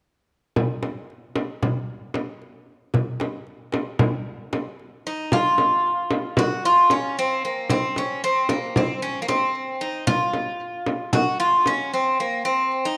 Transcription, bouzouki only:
5.07 5.32 D#4 medium
5.33 6.38 F4 medium
6.39 6.65 F#4 medium
6.65 6.92 F4 medium
6.91 7.18 C#4 medium
7.19 7.44 C4 medium
7.45 7.69 A#3 medium
7.70 7.97 C4 medium
7.98 8.23 C#4 medium
8.24 8.49 C4 medium
8.49 8.74 A#3 medium
8.77 9.02 C4 medium
9.02 9.22 C#4 medium
9.22 9.28 A#3 medium
9.28 9.83 C4 medium
9.81 10.07 D#4 medium
10.07 11.13 F4 medium
11.13 11.39 F#4 medium
11.40 11.67 F4 medium
11.67 11.93 C#4 medium
11.93 12.20 C4 medium
12.20 12.45 A#3 medium
12.45 12.86 C4 medium
12.85 12.97 D#4 medium

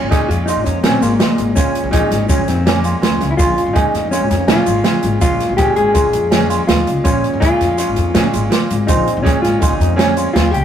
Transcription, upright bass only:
0.02 0.17 G#1 medium
0.29 0.51 F2 medium
0.56 0.64 G#1 medium
0.66 0.80 F2 medium
0.84 0.91 A#2 medium
1.03 1.17 G#1 medium
1.38 1.53 G#1 medium
1.57 1.71 A#1 medium
1.83 1.98 A#1 medium
2.11 2.26 G#1 medium
2.38 2.46 A#1 medium
2.48 2.92 F2 medium
3.02 3.17 D#2 medium
3.21 3.28 C#2 loud
3.39 3.54 A#1 loud
3.66 3.81 G#1 medium
3.94 4.16 F2 medium
4.21 4.28 G#1 medium
4.31 4.45 F2 loud
4.48 4.56 A#2 loud
4.67 4.82 G#1 medium
5.04 5.18 G#1 loud
5.22 5.37 A#1 medium
5.49 5.64 A#1 medium
5.77 5.91 G#1 medium
6.04 6.12 A#1 medium
6.14 6.58 F2 medium
6.69 6.83 D#2 medium
6.87 6.94 C#2 medium
7.05 7.20 A#1 loud
7.33 7.48 G#1 medium
7.61 7.83 F2 medium
7.89 7.96 G#1 medium
7.98 8.12 F2 loud
8.15 8.23 A#2 medium
8.34 8.48 G#1 medium
8.70 8.85 G#1 medium
8.89 9.03 A#1 loud
9.17 9.31 A#1 medium
9.44 9.59 G#1 medium
9.71 9.78 A#1 medium
9.80 10.24 F2 medium
10.35 10.50 D#2 medium
10.53 10.60 C#2 loud

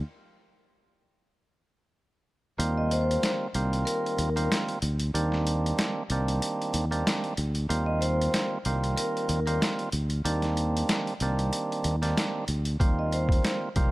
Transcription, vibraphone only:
2.77 2.90 D#5 medium
2.92 3.38 C5 medium
3.85 4.33 A#4 medium
4.36 4.49 A#4 medium
7.86 7.99 D#5 medium
8.01 8.48 C5 medium
8.96 9.44 A#4 medium
9.46 9.59 A#4 medium
12.99 13.11 D#5 medium
13.13 13.60 C5 medium

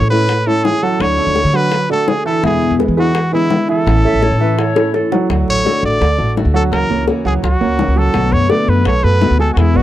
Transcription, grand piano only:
0.11 0.41 A3 medium
0.11 0.41 A4 medium
0.11 0.41 C#5 medium
0.47 0.76 A3 medium
0.47 0.76 A4 medium
0.47 0.76 C#5 medium
0.83 1.12 F#3 medium
0.83 1.12 F#4 medium
0.83 1.12 F#5 medium
1.18 1.48 A3 medium
1.18 1.48 D4 medium
1.18 1.48 A4 medium
1.53 1.83 F#3 medium
1.53 1.83 F#4 medium
1.53 1.83 F#5 medium
1.89 2.19 A3 medium
1.89 2.19 A4 medium
1.89 2.19 D5 medium
2.25 2.40 E3 medium
2.25 2.40 E4 medium
2.25 2.40 E5 medium
2.43 2.72 E3 medium
2.43 2.73 E4 medium
2.43 2.73 E5 medium
2.79 2.94 G#3 medium
2.79 2.94 G#4 medium
2.79 2.94 B4 medium
2.97 3.26 G#3 medium
2.97 3.26 G#4 medium
2.97 3.26 B4 medium
3.33 3.62 G#3 medium
3.33 3.62 G#4 medium
3.33 3.62 B4 medium
3.69 3.98 E3 medium
3.69 3.98 E4 medium
3.69 3.98 E5 medium
4.04 4.33 A3 medium
4.04 4.34 A4 medium
4.04 4.34 C#5 medium
4.40 4.69 E3 medium
4.40 4.69 E4 medium
4.40 4.70 E5 medium
4.75 5.05 A3 medium
4.75 5.05 A4 medium
4.75 5.05 C#5 medium
5.12 5.26 F#3 medium
5.12 5.26 F#4 medium
5.12 5.26 F#5 medium
5.30 5.59 F#3 medium
5.30 5.59 F#4 medium
5.30 5.59 F#5 medium
5.65 5.94 A3 medium
5.65 5.94 A4 medium
5.65 5.94 D5 medium
6.00 6.15 A3 medium
6.00 6.15 A4 medium
6.00 6.15 D5 medium
6.18 6.48 A3 medium
6.18 6.48 A4 medium
6.18 6.48 D5 medium
6.54 6.83 F#3 medium
6.54 6.83 F#4 medium
6.54 6.84 F#5 medium
6.90 7.19 A#3 medium
6.90 7.19 A#4 medium
6.90 7.20 C#5 medium
7.25 7.54 F#3 medium
7.25 7.55 F#4 medium
7.25 7.55 F#5 medium
7.61 7.90 A#3 medium
7.61 7.90 A#4 medium
7.61 7.91 C#5 medium
7.96 8.11 F#3 medium
7.96 8.11 F#4 medium
7.96 8.11 F#5 medium
8.14 8.43 F#3 medium
8.14 8.44 F#4 medium
8.14 8.44 F#5 medium
8.49 8.79 A3 medium
8.49 8.79 A4 medium
8.49 8.79 B4 medium
8.85 9.00 A3 medium
8.85 9.00 A4 medium
8.85 9.01 B4 medium
9.03 9.33 A3 medium
9.03 9.33 A4 medium
9.03 9.33 B4 medium
9.39 9.69 G#3 medium
9.39 9.69 G#4 medium
9.39 9.69 G#5 medium
9.75 9.83 B3 medium
9.75 9.83 B4 medium
9.75 9.83 D5 medium

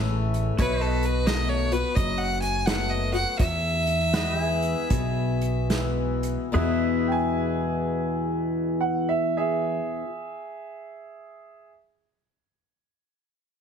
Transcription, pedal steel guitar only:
0.00 0.56 A4 medium
0.00 0.57 C#5 medium
0.00 0.57 E5 medium
0.59 3.36 F#4 medium
0.59 0.75 C#5 medium
0.59 0.80 E5 medium
0.75 0.86 C5 medium
0.80 3.37 D#5 medium
0.86 3.37 B4 medium
4.14 4.31 F#4 medium
4.14 6.51 B4 medium
4.14 4.39 D#5 medium
4.31 4.43 G4 medium
4.39 6.52 E5 medium
4.43 6.51 G#4 medium
6.54 9.79 G#4 medium
6.54 9.79 B4 medium
6.54 9.81 E5 medium

